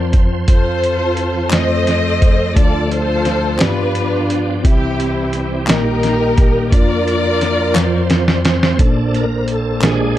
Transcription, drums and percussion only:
0, 0, Header, 1, 2, 480
1, 0, Start_track
1, 0, Key_signature, -2, "major"
1, 0, Tempo, 692042
1, 336, Time_signature, 6, 3, 24, 8
1, 7064, End_track
2, 0, Start_track
2, 0, Title_t, "Drums"
2, 91, Note_on_c, 9, 42, 53
2, 95, Note_on_c, 9, 36, 91
2, 160, Note_off_c, 9, 42, 0
2, 164, Note_off_c, 9, 36, 0
2, 332, Note_on_c, 9, 42, 75
2, 333, Note_on_c, 9, 36, 95
2, 401, Note_off_c, 9, 42, 0
2, 403, Note_off_c, 9, 36, 0
2, 580, Note_on_c, 9, 42, 48
2, 649, Note_off_c, 9, 42, 0
2, 811, Note_on_c, 9, 42, 51
2, 881, Note_off_c, 9, 42, 0
2, 1044, Note_on_c, 9, 39, 96
2, 1056, Note_on_c, 9, 42, 81
2, 1060, Note_on_c, 9, 38, 93
2, 1113, Note_off_c, 9, 39, 0
2, 1125, Note_off_c, 9, 42, 0
2, 1130, Note_off_c, 9, 38, 0
2, 1298, Note_on_c, 9, 42, 53
2, 1306, Note_on_c, 9, 38, 33
2, 1368, Note_off_c, 9, 42, 0
2, 1375, Note_off_c, 9, 38, 0
2, 1540, Note_on_c, 9, 42, 51
2, 1541, Note_on_c, 9, 36, 88
2, 1609, Note_off_c, 9, 42, 0
2, 1610, Note_off_c, 9, 36, 0
2, 1779, Note_on_c, 9, 36, 102
2, 1780, Note_on_c, 9, 42, 84
2, 1848, Note_off_c, 9, 36, 0
2, 1849, Note_off_c, 9, 42, 0
2, 2022, Note_on_c, 9, 42, 43
2, 2091, Note_off_c, 9, 42, 0
2, 2256, Note_on_c, 9, 42, 51
2, 2262, Note_on_c, 9, 38, 33
2, 2325, Note_off_c, 9, 42, 0
2, 2331, Note_off_c, 9, 38, 0
2, 2488, Note_on_c, 9, 39, 90
2, 2500, Note_on_c, 9, 42, 80
2, 2505, Note_on_c, 9, 38, 103
2, 2557, Note_off_c, 9, 39, 0
2, 2570, Note_off_c, 9, 42, 0
2, 2574, Note_off_c, 9, 38, 0
2, 2741, Note_on_c, 9, 42, 53
2, 2810, Note_off_c, 9, 42, 0
2, 2983, Note_on_c, 9, 42, 50
2, 3053, Note_off_c, 9, 42, 0
2, 3223, Note_on_c, 9, 36, 107
2, 3224, Note_on_c, 9, 42, 81
2, 3292, Note_off_c, 9, 36, 0
2, 3293, Note_off_c, 9, 42, 0
2, 3467, Note_on_c, 9, 42, 46
2, 3537, Note_off_c, 9, 42, 0
2, 3697, Note_on_c, 9, 42, 49
2, 3766, Note_off_c, 9, 42, 0
2, 3933, Note_on_c, 9, 39, 94
2, 3946, Note_on_c, 9, 42, 75
2, 3950, Note_on_c, 9, 38, 100
2, 4002, Note_off_c, 9, 39, 0
2, 4016, Note_off_c, 9, 42, 0
2, 4020, Note_off_c, 9, 38, 0
2, 4184, Note_on_c, 9, 42, 51
2, 4192, Note_on_c, 9, 38, 30
2, 4253, Note_off_c, 9, 42, 0
2, 4261, Note_off_c, 9, 38, 0
2, 4422, Note_on_c, 9, 42, 54
2, 4424, Note_on_c, 9, 36, 94
2, 4491, Note_off_c, 9, 42, 0
2, 4494, Note_off_c, 9, 36, 0
2, 4663, Note_on_c, 9, 36, 104
2, 4664, Note_on_c, 9, 42, 82
2, 4732, Note_off_c, 9, 36, 0
2, 4733, Note_off_c, 9, 42, 0
2, 4908, Note_on_c, 9, 42, 42
2, 4977, Note_off_c, 9, 42, 0
2, 5142, Note_on_c, 9, 42, 48
2, 5147, Note_on_c, 9, 38, 31
2, 5211, Note_off_c, 9, 42, 0
2, 5217, Note_off_c, 9, 38, 0
2, 5377, Note_on_c, 9, 39, 93
2, 5381, Note_on_c, 9, 42, 77
2, 5384, Note_on_c, 9, 38, 51
2, 5446, Note_off_c, 9, 39, 0
2, 5450, Note_off_c, 9, 42, 0
2, 5454, Note_off_c, 9, 38, 0
2, 5616, Note_on_c, 9, 42, 57
2, 5622, Note_on_c, 9, 38, 74
2, 5686, Note_off_c, 9, 42, 0
2, 5692, Note_off_c, 9, 38, 0
2, 5743, Note_on_c, 9, 38, 68
2, 5812, Note_off_c, 9, 38, 0
2, 5859, Note_on_c, 9, 42, 52
2, 5864, Note_on_c, 9, 38, 95
2, 5928, Note_off_c, 9, 42, 0
2, 5933, Note_off_c, 9, 38, 0
2, 5986, Note_on_c, 9, 38, 81
2, 6055, Note_off_c, 9, 38, 0
2, 6098, Note_on_c, 9, 42, 78
2, 6099, Note_on_c, 9, 36, 95
2, 6168, Note_off_c, 9, 36, 0
2, 6168, Note_off_c, 9, 42, 0
2, 6343, Note_on_c, 9, 42, 43
2, 6412, Note_off_c, 9, 42, 0
2, 6574, Note_on_c, 9, 42, 45
2, 6643, Note_off_c, 9, 42, 0
2, 6808, Note_on_c, 9, 39, 87
2, 6817, Note_on_c, 9, 42, 72
2, 6821, Note_on_c, 9, 38, 92
2, 6878, Note_off_c, 9, 39, 0
2, 6886, Note_off_c, 9, 42, 0
2, 6890, Note_off_c, 9, 38, 0
2, 7064, End_track
0, 0, End_of_file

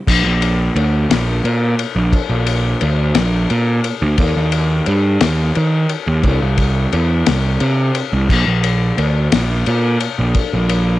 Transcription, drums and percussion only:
0, 0, Header, 1, 2, 480
1, 0, Start_track
1, 0, Tempo, 684932
1, 57, Time_signature, 6, 3, 24, 8
1, 7705, End_track
2, 0, Start_track
2, 0, Title_t, "Drums"
2, 52, Note_on_c, 9, 36, 105
2, 55, Note_on_c, 9, 49, 108
2, 122, Note_off_c, 9, 36, 0
2, 125, Note_off_c, 9, 49, 0
2, 294, Note_on_c, 9, 51, 70
2, 365, Note_off_c, 9, 51, 0
2, 534, Note_on_c, 9, 51, 74
2, 604, Note_off_c, 9, 51, 0
2, 776, Note_on_c, 9, 51, 98
2, 779, Note_on_c, 9, 38, 115
2, 846, Note_off_c, 9, 51, 0
2, 849, Note_off_c, 9, 38, 0
2, 1015, Note_on_c, 9, 51, 73
2, 1086, Note_off_c, 9, 51, 0
2, 1254, Note_on_c, 9, 51, 72
2, 1324, Note_off_c, 9, 51, 0
2, 1489, Note_on_c, 9, 36, 102
2, 1492, Note_on_c, 9, 51, 96
2, 1559, Note_off_c, 9, 36, 0
2, 1562, Note_off_c, 9, 51, 0
2, 1728, Note_on_c, 9, 51, 79
2, 1798, Note_off_c, 9, 51, 0
2, 1968, Note_on_c, 9, 51, 76
2, 2038, Note_off_c, 9, 51, 0
2, 2206, Note_on_c, 9, 51, 99
2, 2209, Note_on_c, 9, 38, 110
2, 2276, Note_off_c, 9, 51, 0
2, 2280, Note_off_c, 9, 38, 0
2, 2452, Note_on_c, 9, 51, 78
2, 2522, Note_off_c, 9, 51, 0
2, 2691, Note_on_c, 9, 51, 71
2, 2761, Note_off_c, 9, 51, 0
2, 2928, Note_on_c, 9, 51, 102
2, 2930, Note_on_c, 9, 36, 103
2, 2998, Note_off_c, 9, 51, 0
2, 3000, Note_off_c, 9, 36, 0
2, 3167, Note_on_c, 9, 51, 76
2, 3237, Note_off_c, 9, 51, 0
2, 3407, Note_on_c, 9, 51, 77
2, 3477, Note_off_c, 9, 51, 0
2, 3649, Note_on_c, 9, 51, 101
2, 3652, Note_on_c, 9, 38, 117
2, 3719, Note_off_c, 9, 51, 0
2, 3722, Note_off_c, 9, 38, 0
2, 3891, Note_on_c, 9, 51, 67
2, 3961, Note_off_c, 9, 51, 0
2, 4130, Note_on_c, 9, 51, 65
2, 4200, Note_off_c, 9, 51, 0
2, 4369, Note_on_c, 9, 51, 92
2, 4370, Note_on_c, 9, 36, 105
2, 4439, Note_off_c, 9, 51, 0
2, 4440, Note_off_c, 9, 36, 0
2, 4609, Note_on_c, 9, 51, 72
2, 4610, Note_on_c, 9, 36, 79
2, 4679, Note_off_c, 9, 51, 0
2, 4680, Note_off_c, 9, 36, 0
2, 4853, Note_on_c, 9, 51, 75
2, 4923, Note_off_c, 9, 51, 0
2, 5091, Note_on_c, 9, 51, 101
2, 5094, Note_on_c, 9, 38, 113
2, 5161, Note_off_c, 9, 51, 0
2, 5164, Note_off_c, 9, 38, 0
2, 5328, Note_on_c, 9, 51, 76
2, 5398, Note_off_c, 9, 51, 0
2, 5570, Note_on_c, 9, 51, 70
2, 5640, Note_off_c, 9, 51, 0
2, 5812, Note_on_c, 9, 36, 102
2, 5815, Note_on_c, 9, 49, 91
2, 5882, Note_off_c, 9, 36, 0
2, 5885, Note_off_c, 9, 49, 0
2, 6052, Note_on_c, 9, 51, 74
2, 6122, Note_off_c, 9, 51, 0
2, 6292, Note_on_c, 9, 51, 79
2, 6362, Note_off_c, 9, 51, 0
2, 6531, Note_on_c, 9, 51, 102
2, 6535, Note_on_c, 9, 38, 112
2, 6601, Note_off_c, 9, 51, 0
2, 6605, Note_off_c, 9, 38, 0
2, 6772, Note_on_c, 9, 51, 80
2, 6842, Note_off_c, 9, 51, 0
2, 7011, Note_on_c, 9, 51, 70
2, 7081, Note_off_c, 9, 51, 0
2, 7250, Note_on_c, 9, 51, 94
2, 7252, Note_on_c, 9, 36, 96
2, 7320, Note_off_c, 9, 51, 0
2, 7322, Note_off_c, 9, 36, 0
2, 7494, Note_on_c, 9, 51, 78
2, 7564, Note_off_c, 9, 51, 0
2, 7705, End_track
0, 0, End_of_file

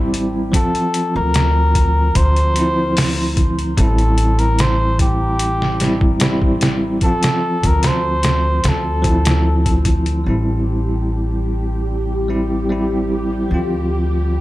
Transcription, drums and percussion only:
0, 0, Header, 1, 2, 480
1, 0, Start_track
1, 0, Tempo, 810811
1, 314, Time_signature, 4, 2, 24, 8
1, 8528, End_track
2, 0, Start_track
2, 0, Title_t, "Drums"
2, 82, Note_on_c, 9, 42, 63
2, 141, Note_off_c, 9, 42, 0
2, 316, Note_on_c, 9, 36, 97
2, 320, Note_on_c, 9, 42, 80
2, 375, Note_off_c, 9, 36, 0
2, 379, Note_off_c, 9, 42, 0
2, 443, Note_on_c, 9, 42, 45
2, 502, Note_off_c, 9, 42, 0
2, 557, Note_on_c, 9, 42, 67
2, 616, Note_off_c, 9, 42, 0
2, 794, Note_on_c, 9, 42, 73
2, 803, Note_on_c, 9, 38, 97
2, 854, Note_off_c, 9, 42, 0
2, 863, Note_off_c, 9, 38, 0
2, 1035, Note_on_c, 9, 36, 93
2, 1037, Note_on_c, 9, 42, 67
2, 1095, Note_off_c, 9, 36, 0
2, 1096, Note_off_c, 9, 42, 0
2, 1274, Note_on_c, 9, 42, 87
2, 1275, Note_on_c, 9, 36, 100
2, 1333, Note_off_c, 9, 42, 0
2, 1334, Note_off_c, 9, 36, 0
2, 1400, Note_on_c, 9, 42, 43
2, 1459, Note_off_c, 9, 42, 0
2, 1514, Note_on_c, 9, 42, 70
2, 1573, Note_off_c, 9, 42, 0
2, 1757, Note_on_c, 9, 46, 73
2, 1766, Note_on_c, 9, 38, 109
2, 1816, Note_off_c, 9, 46, 0
2, 1825, Note_off_c, 9, 38, 0
2, 1994, Note_on_c, 9, 42, 59
2, 1995, Note_on_c, 9, 36, 89
2, 2054, Note_off_c, 9, 36, 0
2, 2054, Note_off_c, 9, 42, 0
2, 2123, Note_on_c, 9, 42, 43
2, 2182, Note_off_c, 9, 42, 0
2, 2234, Note_on_c, 9, 36, 100
2, 2236, Note_on_c, 9, 42, 75
2, 2294, Note_off_c, 9, 36, 0
2, 2295, Note_off_c, 9, 42, 0
2, 2359, Note_on_c, 9, 42, 44
2, 2418, Note_off_c, 9, 42, 0
2, 2473, Note_on_c, 9, 42, 70
2, 2532, Note_off_c, 9, 42, 0
2, 2597, Note_on_c, 9, 42, 44
2, 2656, Note_off_c, 9, 42, 0
2, 2715, Note_on_c, 9, 42, 79
2, 2724, Note_on_c, 9, 38, 104
2, 2774, Note_off_c, 9, 42, 0
2, 2783, Note_off_c, 9, 38, 0
2, 2955, Note_on_c, 9, 36, 95
2, 2956, Note_on_c, 9, 42, 66
2, 3014, Note_off_c, 9, 36, 0
2, 3015, Note_off_c, 9, 42, 0
2, 3193, Note_on_c, 9, 42, 80
2, 3253, Note_off_c, 9, 42, 0
2, 3327, Note_on_c, 9, 38, 48
2, 3387, Note_off_c, 9, 38, 0
2, 3434, Note_on_c, 9, 42, 70
2, 3443, Note_on_c, 9, 38, 42
2, 3493, Note_off_c, 9, 42, 0
2, 3502, Note_off_c, 9, 38, 0
2, 3559, Note_on_c, 9, 36, 101
2, 3618, Note_off_c, 9, 36, 0
2, 3670, Note_on_c, 9, 42, 86
2, 3679, Note_on_c, 9, 38, 115
2, 3729, Note_off_c, 9, 42, 0
2, 3738, Note_off_c, 9, 38, 0
2, 3798, Note_on_c, 9, 36, 86
2, 3858, Note_off_c, 9, 36, 0
2, 3914, Note_on_c, 9, 42, 73
2, 3923, Note_on_c, 9, 38, 94
2, 3973, Note_off_c, 9, 42, 0
2, 3982, Note_off_c, 9, 38, 0
2, 4151, Note_on_c, 9, 42, 51
2, 4154, Note_on_c, 9, 36, 72
2, 4210, Note_off_c, 9, 42, 0
2, 4213, Note_off_c, 9, 36, 0
2, 4278, Note_on_c, 9, 42, 80
2, 4287, Note_on_c, 9, 38, 104
2, 4337, Note_off_c, 9, 42, 0
2, 4346, Note_off_c, 9, 38, 0
2, 4519, Note_on_c, 9, 36, 85
2, 4520, Note_on_c, 9, 42, 61
2, 4578, Note_off_c, 9, 36, 0
2, 4579, Note_off_c, 9, 42, 0
2, 4634, Note_on_c, 9, 42, 76
2, 4643, Note_on_c, 9, 38, 88
2, 4693, Note_off_c, 9, 42, 0
2, 4702, Note_off_c, 9, 38, 0
2, 4873, Note_on_c, 9, 42, 78
2, 4882, Note_on_c, 9, 38, 96
2, 4932, Note_off_c, 9, 42, 0
2, 4941, Note_off_c, 9, 38, 0
2, 5113, Note_on_c, 9, 42, 70
2, 5122, Note_on_c, 9, 38, 92
2, 5172, Note_off_c, 9, 42, 0
2, 5181, Note_off_c, 9, 38, 0
2, 5353, Note_on_c, 9, 36, 86
2, 5353, Note_on_c, 9, 42, 61
2, 5412, Note_off_c, 9, 36, 0
2, 5412, Note_off_c, 9, 42, 0
2, 5478, Note_on_c, 9, 42, 80
2, 5487, Note_on_c, 9, 38, 109
2, 5538, Note_off_c, 9, 42, 0
2, 5547, Note_off_c, 9, 38, 0
2, 5717, Note_on_c, 9, 36, 86
2, 5718, Note_on_c, 9, 42, 61
2, 5777, Note_off_c, 9, 36, 0
2, 5777, Note_off_c, 9, 42, 0
2, 5832, Note_on_c, 9, 36, 86
2, 5832, Note_on_c, 9, 42, 64
2, 5891, Note_off_c, 9, 36, 0
2, 5891, Note_off_c, 9, 42, 0
2, 5956, Note_on_c, 9, 42, 42
2, 6015, Note_off_c, 9, 42, 0
2, 8528, End_track
0, 0, End_of_file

